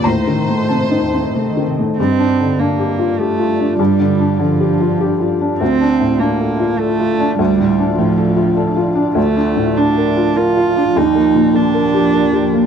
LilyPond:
<<
  \new Staff \with { instrumentName = "Violin section" } { \time 3/4 \key g \minor \tempo 4 = 100 c''2~ c''8 r8 | r2. | r2. | r2. |
r2. | r2. | r2. | }
  \new Staff \with { instrumentName = "Ambient pad" } { \time 3/4 \key g \minor << { <ees' ees''>2. | <f' d''>2.~ | <f' d''>2. | <f' d''>2.~ |
<f' d''>2.~ | <f' d''>2. | <g' d''>2. | } \\ { c'2. | d'2.~ | d'2. | d'2.~ |
d'2. | f2.~ | f2. | } >> }
  \new Staff \with { instrumentName = "Felt piano" } { \time 3/4 \key g \minor << { bes''4 a''4. r8 | r2. | r2. | r2. |
r2. | r2. | r2. | } \\ { \tuplet 3/2 { a,8 ees8 a8 c'8 ees'8 c'8 a8 ees8 a8 } | \tuplet 3/2 { g,8 d'8 d8 d'8 g'8 f'8 g'8 f'8 d'8 } | \tuplet 3/2 { g,8 d8 d'8 d8 g'8 f'8 g'8 f'8 d'8 } | \tuplet 3/2 { d,8 d'8 a,8 d'8 a'8 f'8 a'8 f'8 d'8 } |
\tuplet 3/2 { d,8 a,8 d'8 a,8 a'8 f'8 a'8 f'8 d'8 } | \tuplet 3/2 { d,8 d'8 a,8 d'8 bes'8 f'8 bes'8 f'8 d'8 } | \tuplet 3/2 { ees,8 bes8 bes,8 bes8 bes'8 g'8 bes'8 g'8 bes8 } | } >> }
  \new Staff \with { instrumentName = "Cello" } { \clef bass \time 3/4 \key g \minor ees,16 a,16 c16 ees16 c16 a,16 ees,16 a,16 c16 ees16 c16 a,16 | c'4 bes4 a4 | g4 f4. r8 | c'4 bes4 a4 |
g4 f4. r8 | a4 d'4 f'4 | ees'4 d'2 | }
>>